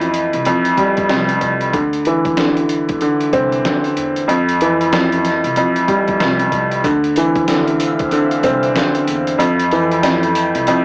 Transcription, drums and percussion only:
0.01 closed hi-hat soft
0.14 closed hi-hat medium
0.33 closed hi-hat medium
0.45 closed hi-hat medium
0.65 closed hi-hat medium
0.78 kick medium
0.78 closed hi-hat medium
0.97 kick medium
0.97 closed hi-hat soft
1.09 snare loud
1.09 closed hi-hat medium
1.29 closed hi-hat medium
1.41 kick medium
1.41 closed hi-hat medium
1.61 closed hi-hat medium
1.73 kick loud
1.73 closed hi-hat medium
1.93 closed hi-hat medium
2.05 closed hi-hat medium
2.25 kick loud
2.25 closed hi-hat soft
2.37 snare loud
2.37 closed hi-hat loud
2.57 closed hi-hat soft
2.69 closed hi-hat medium
2.89 kick medium
2.89 closed hi-hat medium
3.01 closed hi-hat medium
3.20 closed hi-hat medium
3.33 kick medium
3.33 closed hi-hat medium
3.52 closed hi-hat soft
3.65 snare loud
3.65 closed hi-hat medium
3.84 closed hi-hat medium
3.97 closed hi-hat medium
4.16 closed hi-hat medium
4.29 closed hi-hat medium
4.49 closed hi-hat medium
4.61 closed hi-hat medium
4.81 closed hi-hat medium
4.93 snare loud
4.93 closed hi-hat loud
5.12 closed hi-hat medium
5.25 snare soft
5.25 closed hi-hat medium
5.44 closed hi-hat medium
5.56 closed hi-hat medium
5.76 closed hi-hat medium
5.88 kick medium
5.88 closed hi-hat medium
6.08 kick medium
6.08 closed hi-hat soft
6.20 snare loud
6.20 closed hi-hat medium
6.39 closed hi-hat medium
6.52 kick medium
6.52 closed hi-hat medium
6.71 closed hi-hat medium
6.84 kick loud
6.84 closed hi-hat medium
6.84 sleigh bells medium
7.04 closed hi-hat medium
7.16 closed hi-hat medium
7.16 sleigh bells medium
7.36 kick loud
7.36 closed hi-hat soft
7.48 snare loud
7.48 closed hi-hat loud
7.48 sleigh bells medium
7.67 closed hi-hat medium
7.80 closed hi-hat medium
7.80 sleigh bells medium
7.99 kick medium
7.99 closed hi-hat medium
8.11 closed hi-hat medium
8.11 sleigh bells medium
8.31 closed hi-hat medium
8.43 kick medium
8.43 closed hi-hat medium
8.43 sleigh bells medium
8.63 closed hi-hat medium
8.75 snare loud
8.75 closed hi-hat medium
8.75 sleigh bells medium
8.95 closed hi-hat medium
9.07 closed hi-hat medium
9.07 sleigh bells medium
9.27 closed hi-hat medium
9.39 closed hi-hat medium
9.39 sleigh bells medium
9.59 closed hi-hat medium
9.71 closed hi-hat medium
9.71 sleigh bells medium
9.91 closed hi-hat soft
10.03 snare loud
10.03 closed hi-hat loud
10.03 sleigh bells medium
10.23 closed hi-hat medium
10.35 closed hi-hat medium
10.35 sleigh bells medium
10.55 closed hi-hat medium
10.67 closed hi-hat medium
10.67 sleigh bells medium

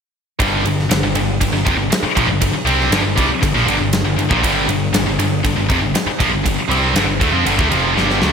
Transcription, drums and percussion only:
0.40 kick loud
0.40 ride loud
0.66 ride medium
0.79 snare soft
0.91 snare loud
0.91 ride loud
1.15 ride medium
1.41 kick medium
1.41 ride loud
1.55 snare soft
1.67 kick loud
1.67 ride medium
1.92 snare loud
1.92 ride loud
2.17 kick loud
2.17 ride medium
2.42 kick medium
2.42 ride loud
2.67 ride medium
2.81 snare soft
2.92 snare loud
2.92 ride loud
3.18 kick loud
3.18 ride medium
3.43 kick medium
3.43 ride medium
3.57 snare soft
3.68 ride medium
3.93 snare loud
3.93 ride medium
4.19 ride medium
4.31 kick loud
4.44 kick medium
4.44 ride medium
4.69 ride medium
4.94 snare loud
4.94 ride loud
5.20 ride medium
5.45 kick medium
5.45 ride medium
5.70 kick loud
5.70 ride medium
5.95 snare loud
5.95 ride loud
6.20 kick loud
6.20 ride medium
6.46 kick medium
6.46 ride loud
6.71 ride medium
6.96 snare loud
6.96 ride loud
7.21 kick loud
7.21 ride medium
7.46 ride medium
7.59 kick loud
7.72 ride medium
7.97 snare medium
8.10 snare medium
8.22 snare loud

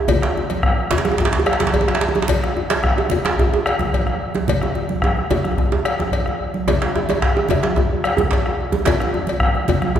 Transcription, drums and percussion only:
0.08 bombo low medium
0.08 cowbell medium
0.08 low conga medium
0.08 djembe bass medium
0.22 bombo rim medium
0.22 djembe slap medium
0.22 high conga soft
0.37 djembe slap soft
0.37 djembe tone medium
0.50 cowbell soft
0.50 high conga medium
0.63 bombo rim medium
0.63 bombo low loud
0.63 high conga soft
0.79 djembe slap soft
0.91 cowbell soft
0.91 djembe slap medium
0.91 low conga medium
0.92 djembe slap medium
0.92 djembe bass medium
0.98 djembe slap medium
1.05 bombo rim medium
1.05 high conga medium
1.05 djembe bass medium
1.11 djembe tone medium
1.18 bombo rim soft
1.18 bombo low medium
1.18 djembe slap medium
1.18 djembe tone medium
1.25 djembe slap medium
1.33 djembe slap medium
1.40 djembe bass medium
1.46 bombo rim medium
1.46 cowbell soft
1.46 djembe tone medium
1.46 high conga soft
1.53 djembe slap medium
1.60 djembe slap medium
1.60 high conga medium
1.60 low conga soft
1.60 djembe bass medium
1.67 djembe slap medium
1.73 bombo low medium
1.73 cowbell soft
1.73 djembe bass medium
1.81 djembe tone medium
1.88 bombo rim medium
1.88 djembe slap medium
1.88 djembe tone medium
1.95 djembe slap medium
2.01 djembe slap medium
2.01 djembe slap soft
2.09 djembe bass medium
2.15 djembe slap soft
2.15 high conga soft
2.15 djembe tone medium
2.22 djembe slap medium
2.28 bombo low medium
2.28 cowbell medium
2.28 low conga medium
2.28 djembe bass medium
2.42 bombo rim medium
2.42 djembe slap medium
2.42 high conga soft
2.56 bombo rim soft
2.56 djembe slap soft
2.56 djembe tone medium
2.70 cowbell medium
2.70 djembe slap loud
2.70 high conga medium
2.83 bombo rim medium
2.83 bombo low medium
2.83 djembe tone medium
2.83 high conga soft
2.97 djembe slap soft
2.97 high conga soft
2.97 djembe tone medium
3.10 cowbell soft
3.10 low conga medium
3.10 djembe bass medium
3.25 bombo rim medium
3.25 djembe slap loud
3.25 high conga medium
3.39 bombo rim soft
3.39 bombo low medium
3.39 djembe tone medium
3.54 djembe tone medium
3.66 bombo rim medium
3.66 cowbell soft
3.66 high conga soft
3.79 djembe slap soft
3.79 high conga medium
3.79 low conga soft
3.79 djembe bass medium
3.93 bombo low medium
3.93 cowbell medium
4.07 bombo rim medium
4.07 djembe tone soft
4.22 djembe slap soft
4.35 djembe slap soft
4.35 high conga medium
4.35 djembe tone medium
4.48 bombo rim soft
4.48 bombo low medium
4.48 cowbell medium
4.48 djembe slap soft
4.48 high conga soft
4.48 low conga medium
4.48 djembe bass medium
4.62 bombo rim medium
4.62 djembe slap soft
4.62 djembe tone medium
4.75 djembe tone medium
4.75 high conga soft
4.89 high conga medium
5.02 bombo rim medium
5.02 bombo low medium
5.02 djembe slap soft
5.02 djembe tone medium
5.17 high conga soft
5.30 cowbell soft
5.30 djembe slap medium
5.30 high conga soft
5.30 djembe tone medium
5.30 low conga medium
5.30 djembe bass medium
5.44 bombo rim medium
5.44 high conga medium
5.57 bombo low medium
5.57 high conga soft
5.57 djembe tone medium
5.72 djembe slap soft
5.72 djembe tone loud
5.85 bombo rim medium
5.85 cowbell medium
5.99 djembe slap soft
5.99 high conga soft
5.99 djembe tone medium
5.99 djembe bass soft
6.12 bombo rim soft
6.12 bombo low medium
6.12 cowbell medium
6.12 high conga soft
6.26 bombo rim medium
6.26 djembe tone soft
6.54 djembe slap soft
6.54 high conga medium
6.67 bombo low medium
6.67 cowbell medium
6.67 djembe tone loud
6.67 low conga medium
6.67 djembe bass medium
6.82 bombo rim medium
6.82 djembe slap medium
6.82 high conga soft
6.95 bombo rim soft
6.95 djembe slap soft
6.95 djembe tone medium
7.09 cowbell soft
7.09 high conga soft
7.09 djembe tone medium
7.22 bombo rim medium
7.22 bombo low medium
7.22 djembe slap medium
7.22 high conga soft
7.36 djembe slap soft
7.36 high conga soft
7.36 djembe tone medium
7.49 cowbell soft
7.49 djembe slap medium
7.49 djembe tone medium
7.49 low conga medium
7.49 djembe bass medium
7.63 bombo rim medium
7.63 djembe slap medium
7.63 high conga soft
7.76 bombo rim soft
7.76 bombo low medium
7.76 djembe tone medium
8.04 bombo rim medium
8.04 cowbell soft
8.04 high conga soft
8.17 djembe slap medium
8.17 high conga medium
8.17 djembe bass medium
8.17 low conga medium
8.19 djembe bass medium
8.31 bombo low medium
8.31 cowbell soft
8.31 djembe slap medium
8.46 bombo rim medium
8.46 djembe tone medium
8.61 djembe slap soft
8.72 high conga medium
8.72 djembe bass medium
8.85 bombo low medium
8.85 cowbell medium
8.85 djembe slap medium
8.85 low conga medium
8.85 djembe bass medium
9.00 bombo rim medium
9.00 djembe slap medium
9.00 high conga soft
9.14 bombo rim soft
9.14 djembe slap soft
9.14 djembe tone medium
9.27 cowbell soft
9.27 high conga medium
9.40 bombo rim medium
9.40 bombo low medium
9.40 high conga soft
9.55 djembe slap soft
9.55 high conga soft
9.68 cowbell soft
9.68 djembe slap medium
9.68 low conga medium
9.68 djembe bass medium
9.82 bombo rim medium
9.82 high conga medium
9.95 bombo rim soft
9.95 bombo low medium
9.95 djembe tone medium

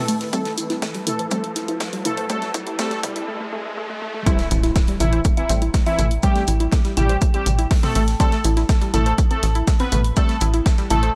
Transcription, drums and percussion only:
0.08 open hi-hat loud
0.08 shaker medium
0.21 snare soft
0.21 closed hi-hat soft
0.33 kick loud
0.33 closed hi-hat medium
0.33 shaker medium
0.45 snare medium
0.45 closed hi-hat soft
0.58 open hi-hat loud
0.58 shaker medium
0.70 snare soft
0.70 closed hi-hat soft
0.82 kick loud
0.82 snare loud
0.82 closed hi-hat medium
0.82 shaker medium
0.94 closed hi-hat soft
1.07 mid tom medium
1.07 open hi-hat loud
1.07 shaker medium
1.19 closed hi-hat soft
1.31 kick loud
1.31 closed hi-hat medium
1.31 shaker medium
1.44 closed hi-hat soft
1.56 snare soft
1.56 open hi-hat loud
1.56 shaker medium
1.68 closed hi-hat soft
1.80 kick loud
1.80 snare loud
1.80 closed hi-hat medium
1.80 shaker medium
1.93 closed hi-hat soft
2.05 mid tom medium
2.05 open hi-hat loud
2.05 shaker medium
2.17 closed hi-hat soft
2.29 kick loud
2.29 closed hi-hat medium
2.29 shaker medium
2.42 snare soft
2.42 closed hi-hat soft
2.54 kick loud
2.54 open hi-hat loud
2.54 shaker medium
2.67 closed hi-hat soft
2.79 kick loud
2.79 snare loud
2.79 closed hi-hat medium
2.79 shaker medium
2.91 snare soft
2.91 closed hi-hat soft
3.03 kick loud
3.03 mid tom medium
3.03 open hi-hat loud
3.03 shaker medium
3.16 open hi-hat medium
4.26 kick loud
4.26 closed hi-hat medium
4.26 shaker medium
4.38 snare medium
4.38 closed hi-hat soft
4.51 open hi-hat loud
4.51 shaker medium
4.63 snare soft
4.63 closed hi-hat soft
4.76 kick loud
4.76 snare loud
4.76 closed hi-hat medium
4.76 shaker medium
4.87 closed hi-hat soft
5.00 mid tom medium
5.00 open hi-hat loud
5.00 shaker medium
5.13 closed hi-hat soft
5.25 kick loud
5.25 closed hi-hat medium
5.25 shaker medium
5.37 closed hi-hat soft
5.49 snare soft
5.49 open hi-hat loud
5.49 shaker medium
5.62 closed hi-hat medium
5.74 kick loud
5.74 snare loud
5.74 closed hi-hat medium
5.74 shaker medium
5.86 closed hi-hat soft
5.99 mid tom medium
5.99 open hi-hat loud
5.99 shaker medium
6.11 closed hi-hat soft
6.23 kick loud
6.23 closed hi-hat medium
6.23 shaker medium
6.36 snare soft
6.36 closed hi-hat soft
6.47 open hi-hat loud
6.47 shaker medium
6.60 closed hi-hat medium
6.72 kick loud
6.72 snare loud
6.72 closed hi-hat medium
6.72 shaker medium
6.85 snare soft
6.85 closed hi-hat soft
6.97 mid tom medium
6.97 open hi-hat loud
6.97 shaker medium
7.09 closed hi-hat soft
7.21 kick loud
7.21 closed hi-hat medium
7.21 shaker medium
7.34 closed hi-hat soft
7.46 mid tom medium
7.46 open hi-hat loud
7.46 shaker medium
7.59 closed hi-hat soft
7.71 kick loud
7.71 snare loud
7.71 closed hi-hat medium
7.71 open hi-hat medium
7.83 snare medium
7.83 closed hi-hat soft
7.83 mid tom medium
7.95 open hi-hat loud
7.95 shaker medium
8.08 snare soft
8.08 closed hi-hat soft
8.20 kick loud
8.20 closed hi-hat medium
8.20 shaker loud
8.32 snare soft
8.32 closed hi-hat soft
8.44 open hi-hat loud
8.44 shaker medium
8.57 snare soft
8.57 closed hi-hat soft
8.69 kick loud
8.69 snare loud
8.69 closed hi-hat medium
8.69 shaker loud
8.82 closed hi-hat soft
8.94 mid tom medium
8.94 open hi-hat loud
8.94 shaker medium
9.06 closed hi-hat soft
9.18 kick loud
9.18 closed hi-hat medium
9.18 shaker medium
9.31 closed hi-hat soft
9.43 snare soft
9.43 open hi-hat loud
9.43 shaker medium
9.55 closed hi-hat soft
9.67 kick loud
9.67 snare loud
9.67 closed hi-hat medium
9.67 shaker loud
9.79 closed hi-hat soft
9.92 mid tom medium
9.92 open hi-hat loud
9.92 shaker medium
10.04 closed hi-hat soft
10.16 kick loud
10.16 closed hi-hat medium
10.16 shaker medium
10.29 snare soft
10.29 closed hi-hat soft
10.41 open hi-hat loud
10.41 shaker medium
10.54 closed hi-hat soft
10.66 kick loud
10.66 snare loud
10.66 closed hi-hat medium
10.66 shaker medium
10.78 snare soft
10.78 closed hi-hat soft
10.90 mid tom medium
10.90 open hi-hat loud
10.90 shaker medium
11.03 closed hi-hat soft

